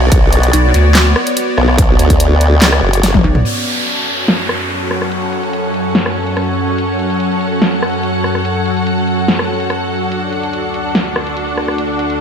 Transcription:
Already playing: B1 B3 F#4 C#5 D5
0.12 B1, kick, closed hi-hat
0.33 closed hi-hat
0.43 closed hi-hat
0.53 B1, closed hi-hat
0.74 D2, closed hi-hat
0.95 snare, clap, closed hi-hat
1.16 cross-stick
1.27 closed hi-hat
1.37 closed hi-hat
1.58 B1, cross-stick
1.68 cross-stick
1.78 kick, closed hi-hat
1.99 D2, closed hi-hat
2.10 kick, closed hi-hat
2.20 closed hi-hat
2.41 closed hi-hat
2.62 C#2, snare, clap, closed hi-hat
2.73 cross-stick
2.83 F#1
2.93 closed hi-hat
3.03 snare, closed hi-hat
3.14 kick, high tom
3.24 B1
3.35 mid tom
3.45 F#2 F#3 C#4 A4 C#5, closed hi-hat, crash, downlifter
3.66 closed hi-hat
3.75 A4, closed hi-hat
3.87 F#4, closed hi-hat
4.08 closed hi-hat
4.28 snare, closed hi-hat
4.49 cross-stick
4.60 closed hi-hat
4.70 closed hi-hat
4.91 F#5, cross-stick
5.02 cross-stick
5.12 closed hi-hat
5.33 closed hi-hat
5.43 closed hi-hat
5.53 closed hi-hat
5.74 closed hi-hat
5.95 snare, closed hi-hat
6.06 cross-stick
6.27 closed hi-hat
6.37 cross-stick, closed hi-hat
6.78 closed hi-hat
6.99 closed hi-hat
7.10 closed hi-hat
7.20 closed hi-hat
7.41 closed hi-hat
7.62 snare, closed hi-hat
7.83 cross-stick
7.93 closed hi-hat
8.03 closed hi-hat
8.24 cross-stick
8.35 cross-stick
8.45 closed hi-hat
8.66 closed hi-hat
8.77 closed hi-hat
8.87 closed hi-hat
9.08 closed hi-hat
9.28 snare, closed hi-hat
9.39 cross-stick
9.60 closed hi-hat
9.70 cross-stick, closed hi-hat
10.12 D2 D3 D4 F#4, closed hi-hat
10.33 closed hi-hat
10.43 closed hi-hat
10.53 closed hi-hat
10.74 closed hi-hat
10.95 snare, closed hi-hat
11.16 cross-stick
11.27 closed hi-hat
11.37 closed hi-hat
11.58 cross-stick
11.68 cross-stick
11.78 closed hi-hat
11.99 closed hi-hat
12.10 closed hi-hat

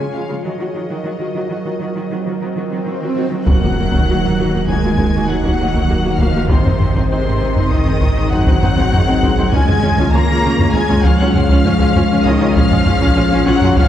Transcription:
Already playing: F3 F4 G#4 C#5 G#5
0.00 G#3 F4
0.13 C#3 G#3 F4 F5
0.29 C#3 G#3 F4
0.42 D#3 F#3 F#4 A#4 D#5, swell
0.59 D#3 F#3 F#4
0.75 D#3 F#3 F#4
0.89 D#3 F#3 F#4
1.04 D#3 F#3 F#4
1.19 D#3 F#3 F#4
1.35 D#3 F#3 F#4
1.49 D#3 F#3 F#4
1.65 D#3 F#3 F#4
1.80 D#3 F#3 F#4
1.95 D#3 F#3 F#4
2.11 D#3 F#3 F#4
2.26 D#3 F#3 F#4
2.41 D#3 F#3 F#4
2.56 D#3 F#3 F#4
2.72 D#3 F#3 F#4
2.86 D#3 F#3 F#4
3.02 D#3 F#3 F#4
3.16 D#3 F#3 F#4
3.30 D#3 F#3 F#4
3.45 D#1 D#2 D#3 F#3 A#3 D#4 F#4 A#4 D#5 F#5 F#6, taiko, impact
3.62 D#2 A#3 F#4
3.77 D#2 A#3 F#4
3.92 D#2 A#3 F#4, taiko
4.08 D#2 A#3 F#4
4.23 D#2 A#3 F#4
4.37 D#2 A#3 F#4
4.53 D#2 A#3 F#4
4.67 D#2 G#3 A#3 F#4 G#5 G#6, taiko
4.83 D#2 A#3 F#4
4.98 D#2 A#3 F#4, taiko
5.14 D#2 A#3 F#4
5.27 D#2 F#3 A#3 F#4 F#5 F#6
5.44 D#2 A#3 F#4, taiko
5.59 D#2 A#3 F#4
5.74 D#2 A#3 F#4, taiko
5.89 D#2 A#3 F#4
6.05 D#2 A#3 F#4
6.18 D#2 F3 A#3 F#4 F5 F6, taiko
6.35 D#2 A#3 F#4
6.48 G#1 C3 D#3 C4 D#4 G#4 C5 C6, taiko
6.65 G#1 C4 D#4, taiko low
6.80 G#1 C4 D#4, taiko low
6.95 G#1 C4 D#4, taiko
7.09 G#1 C3 C4 D#4 C5 C6
7.25 G#1 C4 D#4
7.41 G#1 C4 D#4
7.55 G#1 C4 D#4, taiko low
7.70 G#1 D#3 C4 D#4 D#5 D#6, taiko
7.86 G#1 C4 D#4, taiko low
8.01 G#1 C4 D#4, taiko
8.16 G#1 C4 D#4
8.31 G#1 F#3 C4 D#4 F#5 F#6, taiko low
8.46 G#1 C4 D#4, taiko
8.62 G#1 C4 D#4, taiko low
8.77 G#1 C4 D#4, taiko
8.92 G#1 C4 D#4, taiko low
9.07 G#1 C4 D#4
9.22 G#1 C4 D#4, taiko
9.36 G#1 C4 D#4
9.51 C#2 G#3 C#4 F4 C#5 G#5 G#6, taiko
9.67 C#2 C#4 F4, taiko low
9.82 C#2 C#4 F4, taiko low
9.97 C#2 C#4 F4, taiko
10.12 C#2 A#3 C#4 F4 A#5 A#6
10.27 C#2 C#4 F4
10.42 C#2 C#4 F4
10.58 C#2 C#4 F4, taiko low
10.73 C#2 G#3 C#4 F4 G#5 G#6, taiko
10.88 C#2 C#4 F4, taiko low
11.04 C#2 F3 C#4 F4 F5 F6, taiko
11.19 C#2 F#3 C#4 F4 F#5 F#6
11.33 C#2 F3 C#4 F4 F5 F6, taiko low
11.49 C#2 C#4 F4, taiko
11.65 C#2 C#4 F4, taiko low
11.79 C#2 C#4 F4, taiko
11.95 C#2 C#4 F4, taiko low
12.10 C#2 C#4 F4
12.24 C#2 D#3 C#4 F4 D#5 D#6, taiko
12.41 C#2 C#4 F4
12.53 A#1 F3 C#4 F4 F5 F6, taiko
12.71 A#1 C#4 F4, taiko low
12.86 A#1 C#4 F4, taiko low
13.01 A#1 C#4 F4, taiko
13.16 A#1 C#4 F4
13.31 A#1 C#4 F4
13.45 A#1 F#3 C#4 F4 F#5 F#6
13.61 A#1 C#4 F4, taiko low
13.76 A#1 F3 C#4 F4 F5 F6, taiko

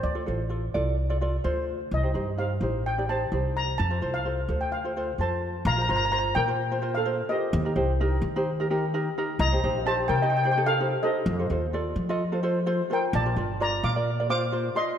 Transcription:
0.03 D2 D5
0.15 F4 A4 D5
0.26 A1 F4 A4 C5
0.49 F4 A4 D5
0.74 C2 F4 A4 D5
1.09 F4 A4 D5
1.21 F4 A4 D5
1.44 D2 F4 A4 C5
1.91 C2 D#5
2.03 D#4 G4 C5
2.14 G2 D#4 G4 C5
2.37 D#4 G4 C5 F5
2.61 A1 D#4 G4 C5
2.86 G5
2.98 D#4 G4 D5
3.09 D#4 G4 C5 A5
3.32 C2 D#4 G4 C5
3.57 A#5
3.78 F2 A5
3.90 F4 A4 C5
4.01 C2 F4 A4 C5
4.14 F5
4.25 F4 A4 C5
4.48 D2 F4 A4 C5
4.61 G5
4.72 F5
4.84 F4 A4 C5
4.96 F4 A4 C5
5.18 F2 F4 A4 C5 A5
5.65 A#1 F5 A#5
5.72 A#5
5.77 F4 A#4 C5
5.82 A#5
5.89 G1 F4 A#4 C5 A#5
5.96 A#5
6.05 A#5
6.12 F4 A#4 C5 A#5
6.19 A#5
6.35 A#2 A#4 G5
6.47 F4 A#4 C5
6.71 F4 A#4 C5
6.82 F4 A#4 C5
6.95 A4 F5
7.05 F4 A#4 C5
7.29 F4 G4 A#4 C5 D#5
7.53 D#2
7.65 D#4 G4 A#4
7.76 C2 D#4 G4 C5
8.00 D#4 G4 A#4
8.22 D#3
8.36 D#4 G4 C5
8.60 D#4 G4 A#4
8.70 D#4 G4 A#4
8.94 D#4 G4 A#4
9.18 D#4 G4 A#4
9.39 C2 D#5 A#5
9.52 D#4 G4 C5
9.64 A#1 D#4 G4 C5
9.86 D#4 G4 C5 A5
10.08 C3 A#4 G5
10.16 G5
10.22 D#4 G4 D#5 G5
10.30 G5
10.37 G5
10.44 D#4 G4 C5 G5
10.51 G5
10.57 D#4 G4 A4
10.66 A4 F5
10.80 D#4 G4 C5
11.03 D#4 G4 A4 C5 D#5
11.26 F2
11.39 F4 A4 C5
11.50 D#2 F4 A4 C5
11.73 F4 A4 D5
11.96 F3
12.09 F4 A4 D#5
12.32 F4 A4 C5
12.43 F4 A4 C5
12.66 F4 A4 C5
12.90 F4 A4 A#4 C5 G5
13.13 A#1 D5 A5
13.26 F4 A#4 D5
13.36 G1 F4 A#4 D5
13.60 F4 A#4 D5 A#5
13.83 A#2 F5 D6
13.96 F4 A#4 D5
14.20 F4 A#4 D5
14.29 F4 A#4 C5 F5 D6
14.52 F4 A#4 C5
14.75 F4 A#4 D5 D#5 C6

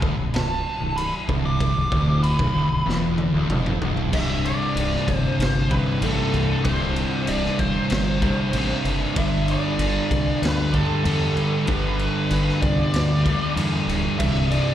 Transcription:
0.02 D1 D2, kick
0.17 B0 B1
0.33 B0 B1 A5, snare, crash
0.81 B0 B1
0.96 B5, crash
1.28 C1 C2, kick
1.45 D6
1.60 kick, crash
1.76 B0 B1
1.92 D1 D2, kick
2.23 B5, crash
2.39 B0 B1, kick
2.54 D1 D2
2.70 B0 B1
2.86 E1 E2, snare
3.18 high tom
3.32 D1 D2
3.49 F1 F2, mid tom
3.66 mid tom
3.81 B0 B1, floor tom
3.97 floor tom
4.12 C1 C2 G2 C3 E5, kick, crash
4.45 D5, crash
4.75 C1, crash
4.95 snare
5.08 E1, kick, crash
5.14 C5
5.39 G1 C5, snare, crash
5.70 C2 G2 C3 B4, kick, crash
6.01 A1 C2 G2 C3 A4, crash
6.33 C2, crash
6.64 C1 C2 G2 C3 C5, kick, crash
6.96 crash
7.27 C1 D5, crash
7.45 snare
7.59 E1 C5, kick, crash
7.90 G1, snare, crash
8.21 C2 G2 C3, kick, crash
8.53 A1 C2 G2 C3, crash
8.84 F#1, crash
9.15 G1 G2 D3 G3 E5, kick, crash
9.48 D5, crash
9.78 G1, crash
10.11 C2, kick, crash
10.42 D2 B4, snare, crash
10.73 G2 D3 G3 A4, kick, crash
11.04 E2 G2 D3 G3, crash
11.36 G2, crash
11.67 G1 G2 D3 G3 B4, kick, crash
11.99 crash
12.30 G1, crash
12.49 snare
12.61 C2 D5, kick, crash
12.93 D2, snare, crash
13.25 G2 D3 G3, kick, crash
13.56 E2 G2 D3 G3, crash
13.87 D1, crash
14.19 C1 C2 G2 C3 E5, kick, crash
14.51 D5, crash

